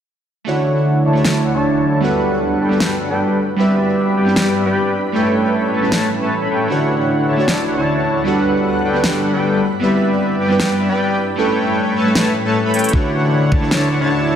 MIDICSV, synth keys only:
0, 0, Header, 1, 2, 480
1, 0, Start_track
1, 0, Key_signature, 2, "major"
1, 0, Tempo, 389610
1, 574, Time_signature, 4, 2, 24, 8
1, 17689, End_track
2, 0, Start_track
2, 0, Title_t, "Synth keys"
2, 0, Program_c, 0, 88
2, 548, Note_on_c, 0, 57, 84
2, 573, Note_on_c, 0, 62, 75
2, 585, Note_on_c, 0, 66, 78
2, 598, Note_on_c, 0, 73, 93
2, 797, Control_c, 0, 64, 127
2, 1376, Note_off_c, 0, 57, 0
2, 1388, Note_off_c, 0, 62, 0
2, 1393, Note_on_c, 0, 57, 81
2, 1394, Note_off_c, 0, 66, 0
2, 1400, Note_off_c, 0, 73, 0
2, 1418, Note_on_c, 0, 62, 73
2, 1429, Note_on_c, 0, 66, 72
2, 1443, Note_on_c, 0, 73, 87
2, 2454, Note_off_c, 0, 57, 0
2, 2466, Note_off_c, 0, 62, 0
2, 2468, Note_on_c, 0, 55, 82
2, 2472, Note_off_c, 0, 66, 0
2, 2478, Note_off_c, 0, 73, 0
2, 2481, Note_on_c, 0, 59, 76
2, 2493, Note_on_c, 0, 62, 76
2, 2505, Note_on_c, 0, 66, 74
2, 2507, Control_c, 0, 64, 0
2, 2518, Note_on_c, 0, 71, 93
2, 2723, Control_c, 0, 64, 127
2, 3295, Note_off_c, 0, 55, 0
2, 3302, Note_off_c, 0, 59, 0
2, 3308, Note_off_c, 0, 62, 0
2, 3314, Note_off_c, 0, 66, 0
2, 3314, Note_on_c, 0, 55, 72
2, 3320, Note_off_c, 0, 71, 0
2, 3327, Note_on_c, 0, 59, 65
2, 3339, Note_on_c, 0, 62, 67
2, 3352, Note_on_c, 0, 66, 67
2, 3364, Note_on_c, 0, 71, 76
2, 4148, Note_off_c, 0, 55, 0
2, 4154, Note_off_c, 0, 59, 0
2, 4160, Note_off_c, 0, 62, 0
2, 4167, Note_off_c, 0, 66, 0
2, 4172, Note_off_c, 0, 71, 0
2, 4189, Control_c, 0, 64, 0
2, 4389, Note_on_c, 0, 55, 86
2, 4391, Control_c, 0, 64, 127
2, 4401, Note_on_c, 0, 59, 76
2, 4414, Note_on_c, 0, 60, 79
2, 4426, Note_on_c, 0, 64, 78
2, 4438, Note_on_c, 0, 71, 96
2, 5216, Note_off_c, 0, 55, 0
2, 5222, Note_off_c, 0, 59, 0
2, 5229, Note_off_c, 0, 60, 0
2, 5232, Note_on_c, 0, 55, 78
2, 5235, Note_off_c, 0, 64, 0
2, 5240, Note_off_c, 0, 71, 0
2, 5245, Note_on_c, 0, 59, 73
2, 5257, Note_on_c, 0, 60, 73
2, 5270, Note_on_c, 0, 64, 74
2, 5281, Note_on_c, 0, 71, 91
2, 6067, Note_off_c, 0, 55, 0
2, 6073, Note_off_c, 0, 59, 0
2, 6079, Note_off_c, 0, 60, 0
2, 6085, Note_off_c, 0, 64, 0
2, 6091, Note_off_c, 0, 71, 0
2, 6112, Control_c, 0, 64, 0
2, 6308, Note_on_c, 0, 55, 81
2, 6321, Note_on_c, 0, 57, 77
2, 6332, Note_on_c, 0, 61, 76
2, 6336, Control_c, 0, 64, 127
2, 6345, Note_on_c, 0, 64, 75
2, 6358, Note_on_c, 0, 69, 91
2, 7136, Note_off_c, 0, 55, 0
2, 7142, Note_off_c, 0, 57, 0
2, 7148, Note_off_c, 0, 61, 0
2, 7153, Note_on_c, 0, 55, 71
2, 7154, Note_off_c, 0, 64, 0
2, 7160, Note_off_c, 0, 69, 0
2, 7165, Note_on_c, 0, 57, 64
2, 7177, Note_on_c, 0, 61, 66
2, 7189, Note_on_c, 0, 64, 63
2, 7202, Note_on_c, 0, 69, 80
2, 8213, Note_off_c, 0, 55, 0
2, 8213, Note_off_c, 0, 57, 0
2, 8225, Note_off_c, 0, 61, 0
2, 8228, Note_on_c, 0, 57, 85
2, 8231, Note_off_c, 0, 64, 0
2, 8238, Note_off_c, 0, 69, 0
2, 8252, Note_on_c, 0, 62, 80
2, 8265, Note_on_c, 0, 66, 77
2, 8269, Control_c, 0, 64, 0
2, 8277, Note_on_c, 0, 73, 93
2, 8498, Control_c, 0, 64, 127
2, 9055, Note_off_c, 0, 57, 0
2, 9068, Note_off_c, 0, 62, 0
2, 9071, Note_on_c, 0, 57, 81
2, 9074, Note_off_c, 0, 66, 0
2, 9080, Note_off_c, 0, 73, 0
2, 9096, Note_on_c, 0, 62, 72
2, 9108, Note_on_c, 0, 66, 75
2, 9120, Note_on_c, 0, 73, 89
2, 10132, Note_off_c, 0, 57, 0
2, 10145, Note_off_c, 0, 62, 0
2, 10148, Note_on_c, 0, 55, 83
2, 10151, Note_off_c, 0, 66, 0
2, 10157, Note_off_c, 0, 73, 0
2, 10160, Note_on_c, 0, 59, 77
2, 10173, Note_on_c, 0, 62, 75
2, 10185, Note_on_c, 0, 66, 80
2, 10189, Control_c, 0, 64, 0
2, 10197, Note_on_c, 0, 71, 93
2, 10417, Control_c, 0, 64, 127
2, 10975, Note_off_c, 0, 55, 0
2, 10982, Note_off_c, 0, 59, 0
2, 10988, Note_off_c, 0, 62, 0
2, 10992, Note_on_c, 0, 55, 70
2, 10994, Note_off_c, 0, 66, 0
2, 11000, Note_off_c, 0, 71, 0
2, 11005, Note_on_c, 0, 59, 66
2, 11018, Note_on_c, 0, 62, 66
2, 11029, Note_on_c, 0, 66, 67
2, 11042, Note_on_c, 0, 71, 79
2, 11827, Note_off_c, 0, 55, 0
2, 11833, Note_off_c, 0, 59, 0
2, 11840, Note_off_c, 0, 62, 0
2, 11845, Note_off_c, 0, 66, 0
2, 11851, Note_off_c, 0, 71, 0
2, 11871, Control_c, 0, 64, 0
2, 12068, Note_on_c, 0, 55, 88
2, 12081, Note_on_c, 0, 59, 79
2, 12092, Note_on_c, 0, 60, 78
2, 12105, Note_on_c, 0, 64, 78
2, 12117, Note_on_c, 0, 71, 96
2, 12123, Control_c, 0, 64, 127
2, 12895, Note_off_c, 0, 55, 0
2, 12902, Note_off_c, 0, 59, 0
2, 12908, Note_off_c, 0, 60, 0
2, 12912, Note_on_c, 0, 55, 81
2, 12914, Note_off_c, 0, 64, 0
2, 12920, Note_off_c, 0, 71, 0
2, 12925, Note_on_c, 0, 59, 74
2, 12937, Note_on_c, 0, 60, 76
2, 12949, Note_on_c, 0, 64, 73
2, 12962, Note_on_c, 0, 71, 89
2, 13747, Note_off_c, 0, 55, 0
2, 13753, Note_off_c, 0, 59, 0
2, 13759, Note_off_c, 0, 60, 0
2, 13765, Note_off_c, 0, 64, 0
2, 13772, Note_off_c, 0, 71, 0
2, 13787, Control_c, 0, 64, 0
2, 13988, Note_on_c, 0, 55, 85
2, 14000, Note_on_c, 0, 57, 78
2, 14012, Note_on_c, 0, 61, 77
2, 14025, Note_on_c, 0, 64, 79
2, 14037, Note_on_c, 0, 69, 96
2, 14038, Control_c, 0, 64, 127
2, 14816, Note_off_c, 0, 55, 0
2, 14821, Note_off_c, 0, 57, 0
2, 14828, Note_off_c, 0, 61, 0
2, 14834, Note_off_c, 0, 64, 0
2, 14834, Note_on_c, 0, 55, 71
2, 14840, Note_off_c, 0, 69, 0
2, 14845, Note_on_c, 0, 57, 66
2, 14858, Note_on_c, 0, 61, 67
2, 14871, Note_on_c, 0, 64, 67
2, 14882, Note_on_c, 0, 69, 76
2, 15893, Note_off_c, 0, 57, 0
2, 15894, Note_off_c, 0, 55, 0
2, 15906, Note_off_c, 0, 61, 0
2, 15908, Note_on_c, 0, 57, 84
2, 15912, Note_off_c, 0, 64, 0
2, 15918, Note_off_c, 0, 69, 0
2, 15932, Note_on_c, 0, 62, 78
2, 15945, Note_on_c, 0, 66, 79
2, 15950, Control_c, 0, 64, 0
2, 15958, Note_on_c, 0, 73, 93
2, 16151, Control_c, 0, 64, 127
2, 16735, Note_off_c, 0, 57, 0
2, 16748, Note_off_c, 0, 62, 0
2, 16753, Note_on_c, 0, 57, 80
2, 16754, Note_off_c, 0, 66, 0
2, 16760, Note_off_c, 0, 73, 0
2, 16778, Note_on_c, 0, 62, 74
2, 16790, Note_on_c, 0, 66, 74
2, 16803, Note_on_c, 0, 73, 87
2, 17689, Note_off_c, 0, 57, 0
2, 17689, Note_off_c, 0, 62, 0
2, 17689, Note_off_c, 0, 66, 0
2, 17689, Note_off_c, 0, 73, 0
2, 17689, End_track
0, 0, End_of_file